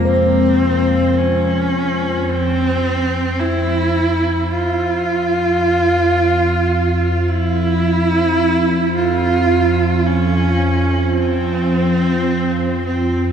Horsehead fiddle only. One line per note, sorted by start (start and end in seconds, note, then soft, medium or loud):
0.06 1.19 C4 medium
1.18 2.31 C#4 loud
2.29 3.41 C4 loud
3.40 4.53 E4 loud
4.51 7.30 F4 medium
7.29 8.95 E4 loud
8.96 10.08 F4 loud
10.07 11.20 C#4 loud
11.18 12.84 C4 loud
12.86 13.32 C4 medium